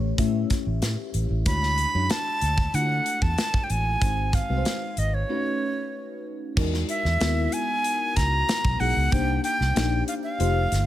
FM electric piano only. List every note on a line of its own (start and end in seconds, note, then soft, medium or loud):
0.00 0.18 A3 medium
0.00 0.19 C#4 medium
0.00 0.19 E4 medium
0.00 0.19 G4 medium
0.00 1.48 B4 medium
0.00 1.47 C#5 medium
0.18 1.25 A3 medium
0.18 1.25 C#4 medium
0.18 1.25 E4 medium
0.18 1.25 G4 medium
0.18 1.25 E5 medium
1.46 1.86 G#3 medium
1.46 1.86 D4 medium
1.46 1.86 E4 medium
1.46 1.87 F#4 medium
1.46 1.87 C#5 medium
1.94 2.61 G#3 medium
1.94 2.61 D4 medium
1.94 2.61 E4 medium
1.94 2.61 F#4 medium
1.94 2.61 C#5 medium
2.74 3.80 A3 medium
2.74 3.80 D4 medium
2.74 3.80 E4 medium
2.74 2.81 F4 soft
2.74 3.81 A4 medium
2.81 3.84 F#4 medium
4.01 4.41 G#3 medium
4.01 4.41 C4 medium
4.01 4.42 D#4 medium
4.01 4.42 F#4 medium
4.01 4.42 C5 medium
4.49 5.16 G#3 medium
4.49 5.16 C4 medium
4.49 5.16 D#4 medium
4.49 5.16 F#4 medium
4.49 4.56 B4 medium
4.57 5.20 C5 medium
5.29 6.35 A3 medium
5.29 6.36 C#4 medium
5.29 6.36 D#4 medium
5.29 6.36 F#4 medium
5.29 6.36 B4 medium
6.56 7.10 G#3 medium
6.56 7.10 D#4 medium
6.56 7.10 E4 medium
6.56 7.10 F#4 medium
6.56 7.10 A#4 medium
7.20 8.27 G#3 medium
7.20 8.27 B3 medium
7.20 8.27 E4 medium
7.20 8.27 F#4 medium
7.20 8.27 A#4 medium
8.80 9.07 G#3 medium
8.80 9.07 D#4 medium
8.80 9.07 E4 medium
8.80 9.07 F#4 medium
8.80 9.07 G#4 medium
9.11 9.65 A#3 medium
9.11 9.65 D4 medium
9.11 9.65 D#4 medium
9.11 9.66 G4 medium
9.11 9.66 C5 medium
9.75 10.40 A#3 medium
9.75 10.40 D4 medium
9.75 10.38 D#4 medium
9.75 10.39 G4 medium
9.75 10.40 D5 medium
10.39 10.86 A3 medium
10.39 10.86 D#4 medium
10.39 10.86 F4 medium
10.39 10.86 G4 medium
10.39 10.86 C5 medium